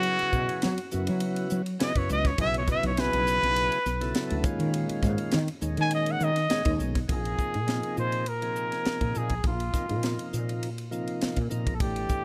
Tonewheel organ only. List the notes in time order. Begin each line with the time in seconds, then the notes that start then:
Already playing: C#3 F#3 B3 E4 G#4
0.92 C#3 F#3 B3 E4 F#4
1.80 C#3 F#3 B3 E4 G#4
1.96 C#3 F#3 B3 E4 B4
2.39 C#3 F#3 B3 E4 G#4
2.68 C#3 F#3 B3 E4 B4
2.98 C#3 F#3 B3 E4 G#4
4.01 C#3 F#3 B3 E4 A4
4.44 A#2 D#3 G#3 C#4 F4
5.61 A#2 D#3 G#3 C#4 D#4
6.49 A#2 D#3 G#3 C#4 G#4
6.65 A#2 D#3 G#3 C#4 D#4
7.08 C3 F3 A#3 D#4 G#4
7.66 C3 F3 A#3 D#4 G#4
8.42 C3 F3 A#3 D#4 G#4
9.73 C3 F3 A#3 D#4 F4
9.89 C3 F3 A#3 D#4 F4
10.91 C3 F3 A#3 D#4 F4
11.50 C3 F3 A#3 D#4 A#4
11.81 B2 E3 A3 D4 G4